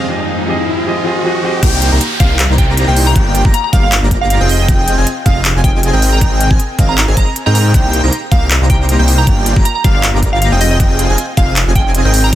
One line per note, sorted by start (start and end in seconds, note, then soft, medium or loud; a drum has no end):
0.00 riser medium
0.08 0.45 F3 medium
0.08 0.45 C4 medium
0.08 0.46 G4 medium
0.08 0.47 G#4 medium
0.08 0.48 D#5 medium
0.46 0.83 F3 medium
0.46 0.84 C4 medium
0.46 0.85 G4 medium
0.46 0.85 G#4 medium
0.46 0.86 D#5 loud
0.84 1.02 F3 medium
0.84 1.03 C4 medium
0.84 1.04 G4 medium
0.84 1.05 G#4 medium
0.88 1.05 D#5 medium
1.03 1.21 F3 medium
1.03 1.22 C4 medium
1.03 1.23 G4 medium
1.03 1.24 G#4 medium
1.07 1.24 D#5 medium
1.23 1.40 F3 medium
1.23 1.41 C4 medium
1.23 1.42 G4 medium
1.23 1.43 G#4 medium
1.27 1.43 D#5 medium
1.42 1.60 F3 medium
1.42 1.61 C4 medium
1.42 1.61 G4 medium
1.42 1.62 G#4 medium
1.42 1.62 D#5 loud
1.63 1.90 C2 loud
1.63 1.90 A#3 medium
1.63 1.90 D#4 medium
1.63 1.90 G4 medium
1.63 1.90 C5 medium
1.63 1.90 G5 loud
1.63 kick loud
1.63 closed hi-hat medium
1.63 crash loud
1.63 downlifter medium
1.82 closed hi-hat medium
1.92 1.99 C2 loud
1.92 2.01 A#3 medium
1.92 2.01 D#4 medium
1.92 2.01 G4 medium
1.92 2.01 C5 medium
1.92 2.01 A#5 loud
1.92 2.01 A#5 medium
2.01 closed hi-hat medium
2.20 2.47 C2 loud
2.20 2.35 A#3 medium
2.20 2.35 D#4 medium
2.20 2.35 G4 medium
2.20 2.35 C5 medium
2.20 2.35 F5 loud
2.20 2.33 F5 medium
2.20 2.35 F5 loud
2.20 kick loud
2.20 closed hi-hat medium
2.39 clap loud
2.39 closed hi-hat medium
2.49 2.86 C2 loud
2.49 2.85 A#3 medium
2.49 2.85 D#4 medium
2.49 2.85 G4 medium
2.49 2.85 C5 medium
2.49 2.85 A#5 medium
2.58 2.71 G5 medium
2.58 kick loud
2.58 closed hi-hat medium
2.77 closed hi-hat medium
2.88 3.14 C2 loud
2.88 3.14 A#3 medium
2.88 3.14 D#4 medium
2.88 3.13 G4 medium
2.88 3.13 C5 medium
2.88 3.14 G5 loud
2.96 open hi-hat loud
3.07 3.20 A#5 medium
3.16 3.43 G1 loud
3.16 3.42 A#3 medium
3.16 3.42 F4 medium
3.16 3.42 G4 medium
3.16 3.42 D5 medium
3.16 3.43 G5 loud
3.16 kick loud
3.16 closed hi-hat medium
3.35 closed hi-hat medium
3.45 3.52 G1 loud
3.45 3.54 A#3 medium
3.45 3.54 G4 medium
3.45 3.54 D5 medium
3.45 3.54 A#5 loud
3.45 kick loud
3.54 3.60 A#5 medium
3.54 closed hi-hat medium
3.64 3.70 A#5 medium
3.73 4.00 G1 loud
3.73 3.88 A#3 medium
3.73 3.88 F4 medium
3.73 3.88 G4 medium
3.73 3.88 D5 medium
3.73 3.88 F5 loud
3.73 3.80 F5 medium
3.73 3.88 F5 loud
3.73 kick loud
3.73 closed hi-hat medium
3.83 3.89 F5 medium
3.92 clap loud
3.92 closed hi-hat medium
4.02 4.38 G1 loud
4.02 4.38 A#3 medium
4.02 4.38 F4 medium
4.02 4.38 G4 medium
4.02 4.38 D5 medium
4.02 4.38 A#5 medium
4.11 kick medium
4.11 closed hi-hat medium
4.21 4.27 F5 medium
4.30 4.37 F5 medium
4.30 closed hi-hat medium
4.40 4.67 F1 loud
4.40 4.66 C4 loud
4.40 4.66 F4 medium
4.40 4.66 G#4 medium
4.40 4.66 D#5 medium
4.40 4.66 G5 loud
4.49 4.56 D#5 medium
4.49 open hi-hat medium
4.60 4.65 D#5 medium
4.68 4.96 F1 loud
4.68 4.95 C4 loud
4.68 4.95 F4 medium
4.68 4.95 G#4 medium
4.68 4.95 D#5 medium
4.68 4.95 G5 loud
4.68 kick loud
4.68 closed hi-hat medium
4.88 closed hi-hat medium
4.98 5.05 F1 loud
4.98 5.07 C4 medium
4.98 5.07 F4 medium
4.98 5.07 G#4 medium
4.98 5.07 D#5 medium
4.98 5.07 G#5 loud
5.07 closed hi-hat medium
5.26 5.53 F1 loud
5.26 5.41 C4 medium
5.26 5.41 F4 medium
5.26 5.41 G#4 medium
5.26 5.41 D#5 medium
5.26 5.41 F5 loud
5.26 5.39 F5 loud
5.26 5.41 F5 medium
5.26 kick loud
5.26 closed hi-hat medium
5.45 clap loud
5.45 closed hi-hat medium
5.55 5.91 F1 loud
5.55 5.91 C4 medium
5.55 5.91 F4 medium
5.55 5.91 G#4 medium
5.55 5.91 D#5 medium
5.55 5.91 G#5 medium
5.64 5.77 G5 medium
5.64 kick loud
5.64 closed hi-hat medium
5.83 closed hi-hat medium
5.93 6.20 G#1 loud
5.93 6.19 C4 loud
5.93 6.19 G#4 medium
5.93 6.19 A#4 medium
5.93 6.19 D#5 loud
5.93 6.19 G5 loud
6.02 open hi-hat loud
6.13 6.58 A#5 medium
6.21 6.49 G#1 loud
6.21 6.48 C4 medium
6.21 6.48 G#4 medium
6.21 6.48 D#5 medium
6.21 6.48 G5 loud
6.21 kick loud
6.21 closed hi-hat medium
6.40 closed hi-hat medium
6.51 6.58 G#1 loud
6.51 6.59 C4 medium
6.51 6.59 G#4 medium
6.51 6.59 D#5 medium
6.51 6.59 G#5 loud
6.51 kick loud
6.60 closed hi-hat medium
6.79 7.06 G#1 loud
6.79 6.94 C4 medium
6.79 6.94 G#4 medium
6.79 6.94 A#4 medium
6.79 6.94 D#5 medium
6.79 6.94 F5 loud
6.79 kick loud
6.79 closed hi-hat medium
6.89 6.95 A#5 medium
6.98 7.04 A#5 medium
6.98 clap loud
6.98 closed hi-hat medium
7.08 7.15 G#1 loud
7.08 7.15 C4 medium
7.08 7.15 G#4 medium
7.08 7.15 A#4 medium
7.08 7.15 D#5 medium
7.08 7.15 G#5 medium
7.17 7.25 G#1 loud
7.17 7.27 C4 medium
7.17 7.27 G#4 medium
7.17 7.27 A#4 medium
7.17 7.27 D#5 medium
7.17 7.27 A#5 loud
7.17 7.30 A#5 medium
7.17 kick medium
7.17 closed hi-hat medium
7.36 closed hi-hat medium
7.46 7.73 G#2 loud
7.46 7.72 C4 medium
7.46 7.72 G#4 medium
7.46 7.72 A#4 medium
7.46 7.72 D#5 medium
7.46 7.72 G5 medium
7.46 7.52 A#5 medium
7.55 7.62 A#5 medium
7.55 open hi-hat loud
7.74 8.02 C2 loud
7.74 8.01 A#3 loud
7.74 8.01 D#4 medium
7.74 8.01 G4 medium
7.74 8.01 C5 medium
7.74 8.01 G5 loud
7.74 kick loud
7.74 closed hi-hat medium
7.93 closed hi-hat medium
8.03 8.11 C2 loud
8.03 8.12 A#3 medium
8.03 8.12 D#4 medium
8.03 8.12 G4 medium
8.03 8.12 C5 medium
8.03 8.12 A#5 loud
8.12 closed hi-hat medium
8.32 8.59 C2 loud
8.32 8.47 A#3 medium
8.32 8.47 D#4 medium
8.32 8.47 G4 medium
8.32 8.47 C5 medium
8.32 8.47 F5 medium
8.32 8.47 F5 loud
8.32 8.45 F5 medium
8.32 kick loud
8.32 closed hi-hat medium
8.51 clap loud
8.51 closed hi-hat medium
8.61 8.97 C2 loud
8.61 8.97 A#3 medium
8.61 8.97 D#4 medium
8.61 8.97 G4 medium
8.61 8.97 C5 medium
8.61 8.97 A#5 medium
8.70 8.83 G5 medium
8.70 kick loud
8.70 closed hi-hat medium
8.89 closed hi-hat medium
8.99 9.25 C2 loud
8.99 9.25 A#3 loud
8.99 9.25 D#4 medium
8.99 9.25 G4 medium
8.99 9.25 C5 medium
8.99 9.25 G5 loud
9.08 open hi-hat medium
9.18 9.31 A#5 loud
9.27 9.54 G1 loud
9.27 9.54 A#3 loud
9.27 9.54 F4 medium
9.27 9.54 G4 medium
9.27 9.54 G5 loud
9.27 kick loud
9.27 closed hi-hat medium
9.46 closed hi-hat medium
9.56 9.63 G1 loud
9.56 9.65 A#3 medium
9.56 9.65 F4 medium
9.56 9.65 G4 medium
9.56 9.65 D5 medium
9.56 9.65 A#5 loud
9.56 kick loud
9.65 9.72 A#5 medium
9.65 closed hi-hat medium
9.75 9.81 A#5 medium
9.84 10.12 G1 loud
9.84 10.00 A#3 medium
9.84 10.00 F4 medium
9.84 10.00 G4 medium
9.84 10.00 D5 medium
9.84 9.91 F5 medium
9.84 10.00 F5 medium
9.84 10.00 F5 loud
9.84 kick loud
9.84 closed hi-hat medium
9.95 10.00 F5 medium
10.03 clap loud
10.03 closed hi-hat medium
10.14 10.50 G1 loud
10.14 10.50 A#3 medium
10.14 10.50 F4 medium
10.14 10.50 G4 medium
10.14 10.50 D5 medium
10.14 10.50 A#5 medium
10.23 kick medium
10.23 closed hi-hat medium
10.33 10.39 F5 medium
10.42 10.48 F5 medium
10.42 closed hi-hat medium
10.52 10.78 F1 loud
10.52 10.78 C4 loud
10.52 10.78 F4 medium
10.52 10.78 G#4 medium
10.52 10.78 D#5 medium
10.52 10.78 G5 loud
10.61 10.67 D#5 medium
10.61 open hi-hat loud
10.71 10.77 D#5 medium
10.80 11.07 F1 loud
10.80 11.07 C4 medium
10.80 11.07 F4 medium
10.80 11.07 G#4 medium
10.80 11.07 D#5 medium
10.80 11.07 G5 loud
10.80 kick loud
10.80 closed hi-hat medium
10.99 closed hi-hat medium
11.09 11.16 F1 loud
11.09 11.18 C4 medium
11.09 11.18 F4 medium
11.09 11.18 G#4 medium
11.09 11.18 D#5 medium
11.09 11.18 G#5 loud
11.18 closed hi-hat medium
11.37 11.65 F1 loud
11.37 11.53 C4 medium
11.37 11.53 F4 medium
11.37 11.53 G#4 medium
11.37 11.53 D#5 medium
11.37 11.50 F5 medium
11.37 11.53 F5 loud
11.37 kick loud
11.37 closed hi-hat medium
11.56 clap loud
11.56 closed hi-hat medium
11.67 12.03 F1 loud
11.67 12.02 C4 medium
11.67 12.02 F4 medium
11.67 12.02 G#4 medium
11.67 12.02 D#5 medium
11.67 12.02 G#5 medium
11.75 11.89 G5 medium
11.75 kick loud
11.75 closed hi-hat medium
11.95 closed hi-hat medium
12.05 12.31 G#1 loud
12.05 12.31 C4 loud
12.05 12.31 G#4 medium
12.05 12.31 A#4 medium
12.05 12.31 D#5 medium
12.05 12.31 G5 loud
12.14 open hi-hat loud
12.24 12.35 A#5 medium